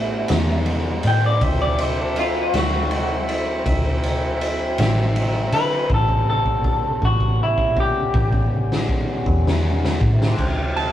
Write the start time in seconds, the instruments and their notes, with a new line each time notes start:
Already playing: fingered electric bass A1, tonewheel organ G3 B3 C#4, clean electric guitar A3
0.28 fingered electric bass E2, snare, ride
0.66 ride
1.03 fingered electric bass A2, snare, ride
1.07 clean electric guitar G5
1.26 clean electric guitar D5
1.41 fingered electric bass D2, tonewheel organ F#3 C4 E5, clean electric guitar C5, kick, ride
1.62 clean electric guitar D5
1.79 clean electric guitar C5, ride
2.01 clean electric guitar A4
2.16 clean electric guitar F4, ride
2.54 fingered electric bass D2, clean electric guitar F#4, snare, ride
2.91 ride
3.29 ride
3.66 fingered electric bass D2, kick, ride
4.03 ride
4.41 ride
4.78 fingered electric bass A1, snare, ride
5.16 ride
5.52 fingered electric bass D3, clean electric guitar B4, ride
5.90 fingered electric bass A1, tonewheel organ G3 B3 C#4, kick
5.94 clean electric guitar A4
6.08 kick
6.30 clean electric guitar A4
6.46 kick
6.64 kick
7.02 fingered electric bass A1, clean electric guitar F#4, kick
7.21 kick
7.43 clean electric guitar E4
7.58 kick
7.77 clean electric guitar G4, kick
8.14 fingered electric bass A1, kick
8.33 kick
8.72 snare
8.89 kick
9.26 fingered electric bass E2, kick
9.47 snare
9.85 snare
10.01 fingered electric bass A2, kick
10.09 tonewheel organ G3 A3
10.14 tonewheel organ B3 C4
10.20 tonewheel organ D4 E4, snare
10.26 tonewheel organ F4 G4
10.32 tonewheel organ A4 B4
10.37 fingered electric bass D2, tonewheel organ F#3 C4 E4 C5, kick, crash
10.76 electric slide guitar A5, ride